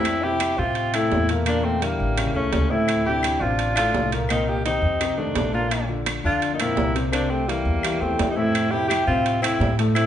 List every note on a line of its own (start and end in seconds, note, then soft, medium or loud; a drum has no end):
0.00 0.52 F2 medium
0.00 0.24 C4 medium
0.00 0.25 E4 loud
0.05 high timbale medium
0.05 claves medium
0.22 0.52 C3 medium
0.22 0.53 C4 medium
0.22 0.58 E4 medium
0.22 0.53 E4 medium
0.22 0.60 G4 loud
0.40 high timbale medium
0.40 low timbale medium
0.40 claves medium
0.57 1.08 A2 medium
0.57 0.88 C3 medium
0.57 0.92 C4 medium
0.57 0.88 C4 medium
0.57 0.96 F4 medium
0.57 0.88 E5 medium
0.75 high timbale medium
0.92 1.23 A2 medium
0.92 1.23 A3 medium
0.92 1.29 C4 medium
0.92 1.29 E4 loud
0.92 1.23 A4 medium
0.92 high timbale medium
0.92 claves medium
1.12 1.94 E2 medium
1.12 low timbale medium
1.29 1.44 A#2 medium
1.29 1.44 A#3 medium
1.29 1.45 A#4 medium
1.29 high timbale medium
1.46 1.76 A#2 medium
1.46 1.64 A#3 medium
1.46 1.76 A#3 medium
1.46 1.66 D4 medium
1.46 1.76 A#4 medium
1.46 high timbale medium
1.46 claves medium
1.63 1.83 A3 medium
1.63 1.84 C4 medium
1.81 2.11 D3 medium
1.81 2.33 G3 medium
1.81 2.35 A#3 medium
1.81 2.11 D4 medium
1.81 2.11 E4 medium
1.81 high timbale medium
1.81 low timbale medium
2.00 2.33 A1 medium
2.17 2.32 C#3 medium
2.17 2.32 C#4 medium
2.17 2.32 E4 medium
2.17 high timbale medium
2.17 claves medium
2.34 2.52 C#2 medium
2.34 2.65 C#3 medium
2.34 2.70 A3 medium
2.34 2.72 C#4 medium
2.34 2.65 C#4 medium
2.34 2.65 E4 medium
2.53 3.36 D2 medium
2.53 high timbale medium
2.53 low timbale medium
2.69 3.00 A2 medium
2.69 3.00 A3 medium
2.69 3.04 C4 medium
2.69 3.05 E4 medium
2.69 3.00 A4 medium
2.88 high timbale medium
2.88 claves medium
3.05 3.35 C3 medium
3.05 3.35 C4 medium
3.05 3.36 D4 medium
3.05 3.42 E4 medium
3.05 3.43 G4 medium
3.23 high timbale medium
3.23 low timbale medium
3.23 claves medium
3.40 3.91 A1 medium
3.40 3.71 C3 medium
3.40 3.71 C4 medium
3.40 3.75 D4 medium
3.40 3.72 D4 medium
3.40 3.77 F4 medium
3.59 high timbale medium
3.75 4.07 A2 medium
3.75 4.06 A3 medium
3.75 4.09 D4 medium
3.75 4.10 F4 loud
3.75 4.07 A4 medium
3.75 high timbale loud
3.75 claves medium
3.94 4.77 C2 medium
3.94 low timbale medium
4.12 4.27 A#2 medium
4.12 4.27 A#3 medium
4.12 4.27 A#4 medium
4.12 high timbale medium
4.28 4.59 A#2 medium
4.28 4.59 A#3 medium
4.28 4.49 C4 medium
4.28 4.50 D#4 medium
4.28 4.59 A#4 medium
4.28 high timbale medium
4.28 claves medium
4.47 4.65 D#4 medium
4.47 4.65 G4 medium
4.65 4.95 D#3 medium
4.65 5.19 C4 medium
4.65 5.19 D#4 medium
4.65 4.95 D#4 medium
4.65 4.95 G4 medium
4.65 high timbale medium
4.65 low timbale medium
4.82 5.32 F2 medium
5.00 5.15 C3 medium
5.00 5.15 C4 medium
5.00 5.15 D#4 medium
5.00 high timbale medium
5.00 claves medium
5.18 5.47 C3 medium
5.18 5.48 D#3 medium
5.18 5.53 A3 medium
5.18 5.47 C4 medium
5.18 5.53 D4 medium
5.36 6.18 A#1 medium
5.36 high timbale medium
5.36 low timbale medium
5.53 5.83 A#2 medium
5.53 5.83 A#3 medium
5.53 5.87 D4 medium
5.53 5.87 F4 medium
5.53 5.83 A#4 medium
5.71 high timbale medium
5.71 claves medium
5.89 6.18 D3 medium
5.89 6.18 D4 medium
5.89 6.18 F4 medium
6.06 high timbale medium
6.06 low timbale medium
6.06 claves medium
6.24 6.74 F2 medium
6.24 6.53 D3 medium
6.24 6.53 D4 medium
6.24 6.51 D4 medium
6.24 6.53 F4 medium
6.24 6.51 F4 medium
6.42 high timbale medium
6.53 6.62 A#3 medium
6.53 6.61 D#4 medium
6.59 6.89 A#2 medium
6.59 6.89 A#3 medium
6.59 6.95 C4 medium
6.59 6.95 E4 medium
6.59 6.89 A#4 medium
6.59 high timbale loud
6.59 claves medium
6.77 7.60 C2 medium
6.77 low timbale medium
6.95 7.09 C3 medium
6.95 7.09 C4 medium
6.95 7.10 C5 medium
6.95 high timbale medium
7.12 7.41 C3 medium
7.12 7.32 A#3 medium
7.12 7.41 C4 medium
7.12 7.32 D4 medium
7.12 7.42 C5 medium
7.12 high timbale medium
7.12 claves medium
7.30 7.49 A3 medium
7.30 7.50 C4 medium
7.48 7.77 E3 medium
7.48 8.01 G3 medium
7.48 8.02 A#3 medium
7.48 7.77 E4 medium
7.48 7.77 G4 medium
7.48 high timbale medium
7.48 low timbale medium
7.65 7.98 E2 medium
7.83 7.98 E3 medium
7.83 7.98 E4 medium
7.83 7.99 G4 medium
7.83 high timbale medium
7.83 claves medium
8.00 8.17 E2 medium
8.00 8.31 E3 medium
8.00 8.29 A3 medium
8.00 8.29 C4 medium
8.00 8.31 E4 medium
8.00 8.31 G4 medium
8.19 9.01 F2 medium
8.19 high timbale medium
8.19 low timbale medium
8.30 8.38 A#3 medium
8.30 8.38 D#4 medium
8.36 8.66 A2 medium
8.36 8.66 A3 medium
8.36 8.73 C4 medium
8.36 8.73 E4 loud
8.36 8.66 A4 medium
8.55 high timbale medium
8.55 claves medium
8.71 9.02 C3 medium
8.71 9.02 C4 medium
8.71 8.89 E4 medium
8.71 9.02 E4 medium
8.71 8.87 G4 medium
8.88 9.06 E4 medium
8.88 9.05 G4 loud
8.88 high timbale medium
8.88 low timbale medium
8.88 claves medium
9.07 9.56 A2 medium
9.07 9.37 C3 medium
9.07 9.40 C4 medium
9.07 9.37 C4 medium
9.07 9.40 F4 loud
9.07 9.37 E5 medium
9.26 high timbale medium
9.42 9.72 A2 medium
9.42 9.72 A3 medium
9.42 9.75 C4 medium
9.42 9.75 E4 medium
9.42 9.72 A4 medium
9.42 high timbale medium
9.42 claves medium
9.60 10.06 A2 medium
9.60 low timbale medium
9.79 9.93 A2 medium
9.79 9.93 A3 medium
9.79 9.93 A4 medium
9.79 high timbale medium
9.94 10.06 A2 medium
9.94 10.06 A3 medium
9.94 10.06 C4 medium
9.94 10.06 E4 loud
9.94 10.06 A4 medium
9.94 high timbale medium
9.94 claves medium